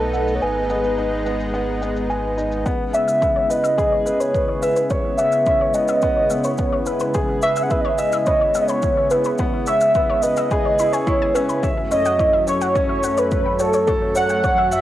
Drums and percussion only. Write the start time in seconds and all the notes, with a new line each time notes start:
0.14 shaker
0.28 shaker
0.42 shaker
0.70 shaker
0.84 shaker
0.98 shaker
1.26 shaker
1.40 shaker
1.54 shaker
1.82 shaker
1.96 shaker
2.10 shaker
2.38 shaker
2.52 shaker
2.66 kick, shaker
2.94 shaker
3.08 shaker
3.22 kick, shaker
3.51 shaker
3.65 shaker
3.78 kick, shaker
4.06 shaker
4.21 shaker
4.34 kick, shaker
4.62 shaker
4.76 shaker
4.90 kick, shaker
5.18 shaker
5.32 shaker
5.46 kick, shaker
5.74 shaker
5.88 shaker
6.02 kick, shaker
6.30 shaker
6.44 shaker
6.58 kick, shaker
6.86 shaker
7.00 shaker
7.14 kick, shaker
7.42 shaker
7.56 shaker
7.71 kick, shaker
7.98 shaker
8.12 shaker
8.26 kick, shaker
8.54 shaker
8.68 shaker
8.82 kick, shaker
9.10 shaker
9.24 shaker
9.38 kick, shaker
9.67 shaker
9.81 shaker
9.95 kick, shaker
10.23 shaker
10.37 shaker
10.51 kick, shaker
10.79 shaker
10.93 shaker
11.07 kick, shaker
11.35 shaker
11.49 shaker
11.63 kick, shaker
11.92 shaker
12.05 shaker
12.19 kick, shaker
12.48 shaker
12.61 shaker
12.76 kick, shaker
13.03 shaker
13.18 shaker
13.31 kick, shaker
13.59 shaker
13.73 shaker
13.88 kick, shaker
14.15 shaker
14.29 shaker
14.44 kick, shaker
14.72 shaker